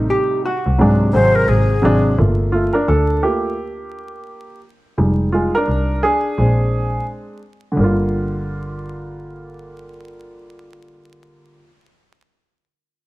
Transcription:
Already playing: grand piano C3 G3 A3 D#4
0.10 hollow-body jazz guitar G4
0.46 hollow-body jazz guitar F#4
0.66 double bass C2
0.78 double bass G#2, grand piano C3 F#3 G#3 D4
1.13 double bass G#1, grand piano C3 F#3 G#3 C4, flute C5
1.35 flute A#4
1.48 double bass G#1, flute G#4
1.82 double bass G#1, grand piano C3 F#3 G#3 D4
2.18 double bass G1, grand piano A3 A#3 F4
2.52 grand piano A3 F4
2.73 grand piano D4 A#4
2.88 double bass D2, grand piano D4 A4
3.22 grand piano A3 A#3 F4 G4
4.97 double bass F1, grand piano G3 G#3 D#4
5.32 grand piano G#3 F4
5.55 grand piano D4 A#4
5.68 double bass C2
6.03 grand piano D4 G#4
6.38 double bass A#1, grand piano G#3 C4 D4
7.72 grand piano D3
7.76 double bass G1, grand piano G3
7.80 grand piano A#3 F4

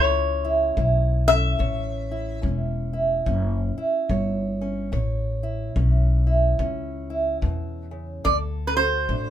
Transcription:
Already playing: upright bass C#2, steel-string acoustic guitar E3 C#4 E4 A4, resonator guitar played with a steel bar C#5
0.45 steel-string acoustic guitar E4
0.77 upright bass B1, steel-string acoustic guitar A3 E4, kick
1.28 steel-string acoustic guitar C#4, resonator guitar played with a steel bar E5
1.59 upright bass A1, steel-string acoustic guitar A2 C#5, kick
2.11 steel-string acoustic guitar E4
2.42 upright bass E1, steel-string acoustic guitar A3 C#4, kick
2.93 steel-string acoustic guitar E4
3.26 upright bass F#1, steel-string acoustic guitar E3 C#4, kick
3.78 steel-string acoustic guitar E4, muted upright bass stroke
4.09 upright bass G1, steel-string acoustic guitar A3 C#5, kick
4.61 steel-string acoustic guitar C#4
4.92 upright bass A1, steel-string acoustic guitar A2 C#5, kick
5.43 steel-string acoustic guitar E4
5.76 upright bass B1, steel-string acoustic guitar A3 C#4, kick
6.27 steel-string acoustic guitar E4
6.59 upright bass C#2, steel-string acoustic guitar E3 C#4, kick
7.10 steel-string acoustic guitar E4
7.42 upright bass E2, steel-string acoustic guitar B2, kick
7.91 steel-string acoustic guitar C#3
8.24 upright bass D2, steel-string acoustic guitar D3 A4, resonator guitar played with a steel bar D5, kick
8.67 resonator guitar played with a steel bar B4
8.76 steel-string acoustic guitar F#4, resonator guitar played with a steel bar C5
9.09 upright bass A2, steel-string acoustic guitar A3 D4, kick

